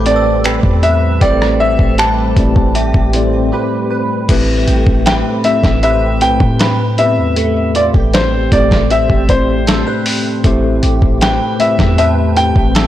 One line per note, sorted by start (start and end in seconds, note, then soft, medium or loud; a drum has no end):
0.00 0.60 A1 loud
0.00 0.05 A2 loud
0.00 4.25 G3 medium
0.00 0.06 A3 loud
0.00 1.21 A3 medium
0.00 4.25 A3 medium
0.00 0.07 C4 medium
0.00 4.25 C4 medium
0.00 0.07 G4 loud
0.00 0.44 G4 medium
0.00 0.08 A4 medium
0.00 4.25 A4 medium
0.00 0.15 B4 loud
0.00 0.43 A5 medium
0.00 0.65 D6 soft
0.05 0.89 A2 medium
0.05 0.89 A3 medium
0.05 0.44 C4 medium
0.05 0.89 C4 medium
0.05 0.90 G4 medium
0.05 0.13 A4 medium
0.05 0.85 D5 medium
0.05 closed hi-hat medium
0.15 0.93 B4 medium
0.15 0.87 E6 medium
0.44 1.59 C4 medium
0.44 1.98 G4 medium
0.44 0.82 B4 medium
0.44 finger snap loud
0.44 closed hi-hat medium
0.63 1.19 E2 loud
0.63 kick medium
0.83 1.99 B4 medium
0.83 1.23 E5 medium
0.83 closed hi-hat medium
1.21 1.77 A1 loud
1.21 2.04 A2 medium
1.21 4.28 A3 medium
1.21 2.04 A3 medium
1.21 2.05 C4 medium
1.21 2.05 G4 medium
1.21 1.29 B4 medium
1.21 1.61 D5 loud
1.21 1.97 G5 medium
1.21 kick loud
1.21 closed hi-hat medium
1.30 2.08 C5 loud
1.42 cross-stick loud
1.60 1.98 C4 medium
1.60 1.96 E5 loud
1.79 2.34 A1 loud
1.79 kick medium
1.98 3.13 C4 medium
1.98 2.75 G4 medium
1.98 3.53 B4 medium
1.98 3.10 A5 loud
1.98 finger snap loud
1.98 closed hi-hat medium
2.36 2.55 A1 loud
2.36 2.92 A2 medium
2.36 2.92 A3 medium
2.36 2.92 C4 medium
2.36 2.93 G4 medium
2.36 2.93 D5 medium
2.36 kick loud
2.36 closed hi-hat medium
2.56 2.93 A1 loud
2.56 kick medium
2.75 3.52 G4 medium
2.75 3.51 E5 medium
2.75 closed hi-hat medium
2.94 3.52 A1 loud
2.94 kick medium
3.13 3.96 A2 medium
3.13 3.97 A3 medium
3.13 3.52 C4 medium
3.13 3.97 C4 medium
3.13 3.97 G4 medium
3.13 3.98 D5 medium
3.13 closed hi-hat medium
3.52 5.05 C4 medium
3.52 4.67 G4 medium
3.52 3.90 B4 medium
3.91 5.07 B4 medium
4.28 4.66 A1 loud
4.28 5.12 A2 loud
4.28 12.87 C3 medium
4.28 7.35 A3 medium
4.28 12.87 A3 medium
4.28 5.12 A3 medium
4.28 10.40 C4 medium
4.28 5.12 C4 medium
4.28 5.13 G4 loud
4.28 5.13 B4 loud
4.28 kick loud
4.28 closed hi-hat medium
4.28 crash loud
4.67 4.86 A1 loud
4.67 5.06 G4 medium
4.67 closed hi-hat medium
4.87 5.24 A1 medium
4.87 kick loud
5.06 5.82 C4 medium
5.06 5.83 G4 medium
5.06 5.83 B4 medium
5.06 5.82 E5 medium
5.06 5.15 G5 loud
5.06 snare loud
5.06 closed hi-hat medium
5.44 5.99 A2 medium
5.44 6.00 A3 medium
5.44 6.00 C4 medium
5.44 6.00 G4 medium
5.44 6.01 A4 medium
5.44 5.82 E5 loud
5.44 closed hi-hat medium
5.63 6.23 A1 loud
5.63 kick medium
5.63 snare medium
5.83 8.13 C4 medium
5.83 7.75 G4 medium
5.83 6.59 B4 medium
5.83 6.23 E5 loud
5.83 closed hi-hat medium
6.21 6.40 B1 loud
6.21 6.76 A2 medium
6.21 6.77 A3 medium
6.21 6.77 C4 medium
6.21 6.77 G4 medium
6.21 6.78 B4 medium
6.21 6.94 G5 loud
6.21 closed hi-hat medium
6.40 7.19 A2 loud
6.40 kick loud
6.59 8.14 B4 medium
6.59 7.36 B5 medium
6.59 snare loud
6.59 closed hi-hat medium
6.98 8.08 A2 medium
6.98 8.09 A3 medium
6.98 7.05 B3 medium
6.98 8.09 G4 medium
6.98 8.10 B4 medium
6.98 7.78 E5 loud
6.98 closed hi-hat medium
7.06 8.12 C4 medium
7.18 7.91 E2 loud
7.36 10.43 A3 medium
7.36 closed hi-hat medium
7.75 7.95 F4 medium
7.75 7.84 D5 medium
7.75 closed hi-hat medium
7.94 8.50 A1 loud
7.94 8.13 G4 medium
7.94 kick medium
8.14 8.90 C4 medium
8.14 8.91 G4 medium
8.14 8.54 C5 medium
8.14 snare loud
8.14 closed hi-hat medium
8.51 9.07 A1 loud
8.51 9.07 A2 medium
8.51 9.07 A3 medium
8.51 9.08 C4 medium
8.51 9.08 G4 medium
8.51 9.08 A4 medium
8.51 8.88 D5 medium
8.51 kick medium
8.51 closed hi-hat medium
8.71 kick medium
8.71 snare medium
8.90 11.21 C4 medium
8.90 10.82 G4 medium
8.90 9.31 E5 loud
8.90 closed hi-hat medium
9.10 9.84 A1 loud
9.10 kick medium
9.29 10.12 A2 medium
9.29 10.12 A3 medium
9.29 10.12 C4 medium
9.29 10.13 G4 medium
9.29 10.02 C5 medium
9.29 10.13 D5 medium
9.29 kick loud
9.29 closed hi-hat medium
9.67 9.87 A4 medium
9.67 snare loud
9.67 closed hi-hat medium
9.87 11.21 B4 medium
10.06 open hi-hat medium
10.44 10.81 A1 loud
10.44 11.27 A2 loud
10.44 12.87 A3 medium
10.44 11.27 A3 loud
10.44 12.87 C4 medium
10.44 11.28 C4 loud
10.44 11.28 G4 loud
10.44 11.28 C5 loud
10.44 kick loud
10.44 closed hi-hat medium
10.83 11.01 A1 loud
10.83 11.21 G4 medium
10.83 closed hi-hat medium
11.02 11.39 A1 loud
11.02 kick medium
11.21 11.98 C4 medium
11.21 11.98 G4 medium
11.21 11.98 B4 medium
11.21 11.57 G5 loud
11.21 snare loud
11.21 closed hi-hat medium
11.59 12.15 A2 medium
11.59 12.15 A3 medium
11.59 12.15 C4 medium
11.59 12.16 G4 medium
11.59 12.16 B4 medium
11.59 11.97 E5 loud
11.59 closed hi-hat medium
11.79 12.53 E2 loud
11.79 kick medium
11.79 snare medium
11.98 12.87 C4 medium
11.98 12.87 G4 medium
11.98 12.75 B4 medium
11.98 12.07 E5 loud
11.98 12.74 A5 medium
11.98 closed hi-hat medium
12.36 12.87 A2 medium
12.36 12.87 A3 medium
12.36 12.87 C4 medium
12.36 12.87 G4 medium
12.36 12.87 B4 medium
12.36 12.87 G5 loud
12.36 closed hi-hat medium
12.56 12.87 A1 loud
12.56 kick loud
12.75 12.87 A4 medium
12.75 snare loud
12.75 closed hi-hat medium